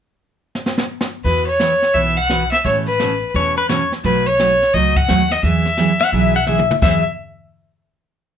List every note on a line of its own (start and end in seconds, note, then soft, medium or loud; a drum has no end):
0.55 snare medium
0.66 snare medium
0.78 snare medium
1.01 snare medium
1.24 1.81 E2 medium
1.24 1.47 E3 medium
1.24 1.47 B3 medium
1.24 1.47 E4 medium
1.24 1.47 F#4 medium
1.24 1.46 B4 medium
1.24 1.47 B4 medium
1.24 brush sweep medium
1.24 kick soft
1.47 1.96 C#5 medium
1.60 1.72 E3 medium
1.60 1.72 B3 medium
1.60 1.72 E4 medium
1.60 1.72 F#4 medium
1.60 1.72 B4 medium
1.60 snare medium
1.60 hi-hat pedal medium
1.82 snare soft
1.94 2.51 B1 medium
1.94 2.17 E3 medium
1.94 2.17 B3 medium
1.94 2.18 E4 medium
1.94 2.18 F#4 medium
1.94 2.18 B4 medium
1.94 2.19 E5 loud
1.94 brush sweep soft
1.94 kick soft
2.17 2.51 F#5 loud
2.29 2.42 E3 medium
2.29 2.42 B3 medium
2.29 2.42 E4 medium
2.29 2.42 F#4 medium
2.29 2.42 B4 medium
2.29 snare medium
2.29 hi-hat pedal medium
2.52 2.64 E5 medium
2.52 snare soft
2.65 3.21 A1 medium
2.65 2.87 B2 medium
2.65 2.87 E3 medium
2.65 2.87 A3 medium
2.65 2.87 C#4 medium
2.65 2.87 A4 medium
2.65 2.75 C#5 medium
2.65 brush sweep soft
2.65 kick soft
2.87 3.31 B4 medium
2.99 3.11 B2 medium
2.99 3.12 E3 medium
2.99 3.11 A3 medium
2.99 3.12 C#4 medium
2.99 3.12 A4 medium
2.99 snare medium
2.99 hi-hat pedal medium
3.34 3.90 E2 medium
3.34 3.57 B2 medium
3.34 3.57 E3 medium
3.34 3.57 A3 medium
3.34 3.57 C#4 medium
3.34 3.57 A4 medium
3.34 3.57 C#5 medium
3.34 brush sweep medium
3.34 kick soft
3.58 3.69 B4 medium
3.69 3.81 B2 medium
3.69 3.81 E3 medium
3.69 3.81 A3 medium
3.69 3.81 C#4 medium
3.69 3.81 A4 medium
3.69 3.92 C#5 medium
3.69 snare medium
3.69 hi-hat pedal medium
3.92 snare soft
4.03 4.60 B1 medium
4.03 4.26 B2 medium
4.03 4.26 F#3 medium
4.03 4.26 A3 medium
4.03 4.26 D#4 medium
4.03 4.26 F#4 medium
4.03 4.28 B4 medium
4.03 brush sweep medium
4.03 kick soft
4.27 4.75 C#5 medium
4.39 4.51 B2 medium
4.39 4.51 F#3 medium
4.39 4.51 A3 medium
4.39 4.51 D#4 medium
4.39 4.51 F#4 medium
4.39 snare medium
4.39 hi-hat pedal medium
4.62 snare soft
4.74 5.04 C#2 medium
4.74 4.96 B2 medium
4.74 4.96 F#3 medium
4.74 4.97 A3 medium
4.74 4.96 D#4 medium
4.74 4.97 F#4 medium
4.74 4.98 D#5 medium
4.74 brush sweep soft
4.74 kick soft
4.96 5.33 F#5 medium
4.96 kick medium
5.08 5.39 D#2 medium
5.08 5.20 B2 medium
5.08 5.21 F#3 medium
5.08 5.21 A3 medium
5.08 5.21 D#4 medium
5.08 5.21 F#4 medium
5.08 snare medium
5.08 hi-hat pedal medium
5.31 5.43 D#5 medium
5.31 snare soft
5.43 5.99 E2 medium
5.43 5.66 E3 medium
5.43 5.66 F#3 medium
5.43 5.66 B3 medium
5.43 5.66 E4 medium
5.43 5.66 G#4 medium
5.43 6.44 E5 loud
5.43 brush sweep soft
5.43 kick soft
5.65 snare soft
5.77 5.90 E3 medium
5.77 5.90 F#3 medium
5.77 5.90 B3 medium
5.77 5.91 E4 medium
5.77 5.91 G#4 medium
5.77 snare medium
5.77 hi-hat pedal medium
6.00 6.13 F#5 medium
6.00 snare soft
6.12 6.68 B1 medium
6.12 6.35 E3 medium
6.12 6.35 F#3 medium
6.12 6.35 B3 medium
6.12 6.35 E4 medium
6.12 6.35 G#4 medium
6.12 6.35 E5 medium
6.12 brush sweep soft
6.12 kick soft
6.36 6.47 F#5 medium
6.47 6.59 E3 medium
6.47 6.60 F#3 medium
6.47 6.60 B3 medium
6.47 6.60 E4 medium
6.47 6.60 G#4 medium
6.47 6.75 E5 medium
6.47 hi-hat pedal medium
6.47 mid tom soft
6.59 mid tom medium
6.71 mid tom medium
6.82 7.03 E2 medium
6.82 7.00 E3 medium
6.82 7.01 F#3 medium
6.82 7.01 B3 medium
6.82 7.01 E4 medium
6.82 7.01 G#4 medium
6.82 7.03 E5 medium
6.82 7.04 E5 medium
6.82 kick loud
6.82 snare medium
6.82 crash medium